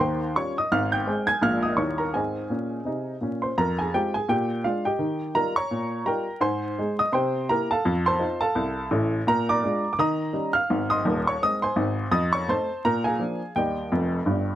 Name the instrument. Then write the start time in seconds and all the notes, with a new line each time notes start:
upright piano
0.00 D#2 D#3 C5 G5 C6
0.36 G3 C#4 F4 C#5 C#6
0.58 D#5 D#6
0.72 G#1 G#2 F5 F6
0.92 G5 G6
1.07 G#3 C4 G#4
1.27 G#5 G#6
1.41 A#1 A#2 G#3 D4 F4 F5 F6
1.63 D#5 D#6
1.76 D#2 D#3 G3 A#3 E4 C#5 C#6
1.98 A#4 A#5
2.13 G#2 C4 G#4 D#5 G#5
2.50 A#2 C#4
2.85 C3 D#4
3.21 A#2 C#4
3.42 C5 C6
3.58 F2 A#4 A#5
3.79 G#4 G#5
3.94 G#3 C4 F4 G4 G5
4.14 G#4 G#5
4.29 A#2 G4 G5
4.64 G#3 D4 F4 F5
4.85 G4 D#5 G5
4.99 D#3
5.35 G3 D#4 F4 A#4 A#5
5.56 C#5 A#5 C#6
5.71 A#2
6.05 G3 D#4 F4 A#4 G5 A#5
6.41 G#2 C5 G#5 C6
6.78 G#3 D#4 G#4
6.99 D#5 D#6
7.12 C3 C5 G5 C6
7.49 A#3 E4 G4 A#4 A#5
7.71 A4 F5 A5
7.85 F2
8.06 C5 A5 C6
8.19 C4 D#4 F4
8.41 A4 F5 A5
8.55 C2
8.91 A1 A2
9.27 A#2 A#4 A#5
9.49 D5 A#5 D6
9.64 G#3 D4 F4
9.93 D6
9.99 D#3 D#5 A#5 D#6
10.33 G3 C#4 D#4
10.53 F5 F6
10.70 G#1 G#2
10.90 D#5 C6 D#6
11.05 D#1 D#2
11.27 C#5 C#6
11.42 G#3 C4 D#4 D#5 D#6
11.62 C5 G#5 C6
11.76 G#1 G#2
12.11 F2 D#5 D#6
12.33 C#5 C#6
12.48 A3 C4 D#4 C5 A5 C6
12.85 A#2 A#4 A#5
13.04 G#4 F5 G#5
13.19 F3 A#3 D4
13.56 D#2 G3 G4 D#5 G5
13.92 F1 F2
14.26 G1 G2